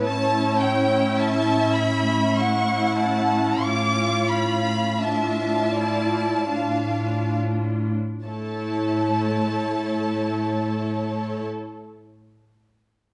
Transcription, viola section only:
0.07 C#4 E4
2.38 C#4 E4
3.65 F4
5.01 D4 F4
5.75 E4
6.53 D4 F4
8.25 A3 E4

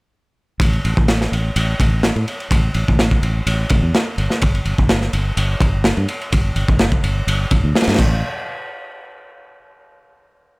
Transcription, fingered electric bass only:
0.60 A1
0.85 A1
0.97 A1
1.32 A1
1.56 A1
1.80 A1
2.16 A2
2.51 A1
2.75 A1
2.88 A1
3.23 A1
3.46 A1
3.70 A1
3.83 E2
4.18 G1
4.42 G1
4.65 G1
4.78 G1
5.13 G1
5.37 G1
5.60 G1
5.97 G2
6.33 G1
6.56 G1
6.68 G1
7.03 G1
7.27 G1
7.51 G1
7.64 D2
7.88 G2
7.99 A1

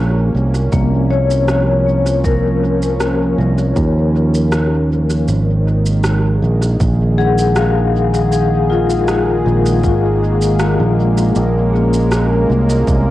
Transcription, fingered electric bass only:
Already playing: A#1
0.35 C2
0.72 C2
3.38 C2
3.76 D#2
5.28 G#1
6.42 A#1
6.80 A#1
9.46 A#1
9.84 G#1
10.80 A#1
11.36 A#1
12.50 C2
12.87 C2

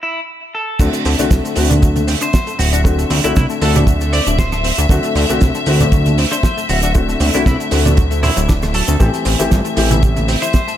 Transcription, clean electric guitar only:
0.03 E4
0.55 A4
2.22 C5
2.59 F#4
2.73 F#4
3.24 E4
3.37 E4
3.62 A4
4.13 D5
4.39 C5
6.32 C5
6.70 F#4
6.84 F#4
7.34 E4
7.47 E4
8.23 E4
8.74 A4
10.42 C5

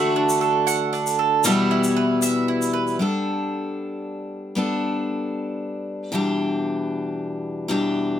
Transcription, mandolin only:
Already playing: A3 F#5
0.16 D4
0.41 A4
0.67 F#5
0.93 D4
1.19 A4
1.45 G3 E5
1.71 E4
1.96 B4
2.22 E5
2.48 E4
2.73 B4

